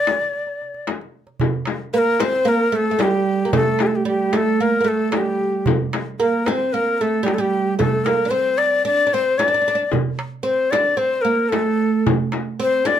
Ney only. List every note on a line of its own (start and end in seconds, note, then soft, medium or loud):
0.00 0.86 D5 loud
1.94 1.99 B4 medium
1.98 2.22 A#4 loud
2.21 2.50 C5 medium
2.48 2.77 A#4 medium
2.76 3.04 A4 medium
3.02 3.54 G4 medium
3.55 3.84 A4 medium
3.82 3.88 G4 medium
3.87 3.97 A4 medium
3.96 4.07 G4 medium
4.07 4.37 G4 medium
4.36 4.63 A4 medium
4.62 4.90 A#4 medium
4.88 5.18 A4 medium
5.16 5.68 G4 medium
6.20 6.48 A#4 medium
6.46 6.74 C5 medium
6.73 6.98 A#4 medium
6.98 7.27 A4 medium
6.98 7.02 A#4 medium
7.25 7.36 G4 medium
7.34 7.42 A4 medium
7.40 7.78 G4 medium
7.78 8.06 A4 medium
8.05 8.31 A#4 medium
8.30 8.59 C5 medium
8.58 8.85 D5 loud
8.86 9.15 D5 loud
9.14 9.40 C5 medium
9.38 9.92 D5 medium
10.44 10.72 C5 medium
10.71 10.99 D5 medium
10.97 11.23 C5 medium
11.22 11.51 A#4 medium
11.49 12.04 A4 medium
12.62 12.88 C5 loud
12.87 13.00 D5 medium